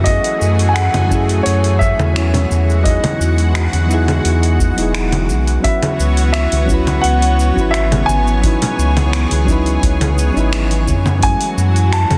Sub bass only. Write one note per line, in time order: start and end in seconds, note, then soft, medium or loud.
0.00 0.19 F#2 medium
0.41 0.89 F#2 medium
0.94 1.41 F#2 medium
1.46 1.94 F#2 medium
1.99 2.46 E2 medium
2.51 2.99 E2 loud
3.20 3.68 E2 medium
3.73 4.20 E2 medium
4.25 4.73 E2 loud
4.78 5.31 E1 medium
5.30 5.59 B1 medium
5.99 6.47 C#2 loud
6.52 6.99 C#2 medium
7.04 7.52 C#2 loud
7.57 8.04 G#1 medium
8.08 8.56 G#1 loud
8.78 9.26 C#2 loud
9.32 9.78 C#2 medium
9.83 10.31 C#2 medium
10.36 10.89 G#1 medium
10.88 11.36 F#2 loud
11.57 12.05 F#2 loud
12.11 12.18 F#2 medium